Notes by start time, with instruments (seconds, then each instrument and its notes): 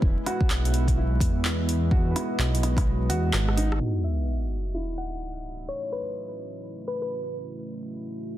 Already playing: ambient pad G#3 B3 E4 B4, upright piano E4
0.02 detuned saw bass E1, ambient pad D#5, kick
0.26 upright piano F#4, cross-stick, closed hi-hat
0.41 kick
0.50 detuned saw bass B1, clap
0.65 closed hi-hat
0.74 closed hi-hat
0.88 kick, closed hi-hat
0.98 upright piano E4
1.20 detuned saw bass E2, kick, closed hi-hat
1.45 clap
1.69 closed hi-hat
1.91 upright piano F#4, kick
2.11 upright piano B4
2.16 cross-stick, closed hi-hat
2.39 detuned saw bass B1, clap
2.55 closed hi-hat
2.63 cross-stick, closed hi-hat
2.77 kick, cross-stick, closed hi-hat
3.09 detuned saw bass E2, upright piano F#4, closed hi-hat
3.33 detuned saw bass G#1, cross-stick, clap
3.48 cross-stick
3.57 upright piano D#4, closed hi-hat
3.72 cross-stick
3.80 ambient pad A3 C#4 E4 F#4 C#5, upright piano F#4, sub drop
4.04 synth pluck E5
4.74 upright piano E4
4.98 synth pluck F#5
5.69 synth pluck C#5
5.92 synth pluck B4
6.88 synth pluck B4
7.02 synth pluck B4
7.58 ambient pad B4